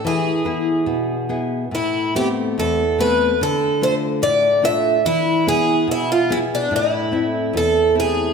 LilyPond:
<<
  \new Staff \with { instrumentName = "Twelve-string acoustic guitar" } { \time 2/4 \key a \minor \tempo 4 = 72 gis'4. r8 | e'8 g'8 a'8 b'8 | a'8 c''8 d''8 e''8 | e'8 gis'8 e'16 f'16 e'16 d'16 |
e'4 a'8 gis'8 | }
  \new Staff \with { instrumentName = "Nylon-string guitar" } { \time 2/4 \key a \minor e8 <b e' gis'>8 b,8 <b e' gis'>8 | a,8 <a b c'>8 e,8 <a b c'>8 | d8 <a d' f'>8 a,8 <a d' f'>8 | e8 <b e' gis'>8 b,8 <b e' gis'>8 |
a,8 <a c' e'>8 e,8 <a c' e'>8 | }
>>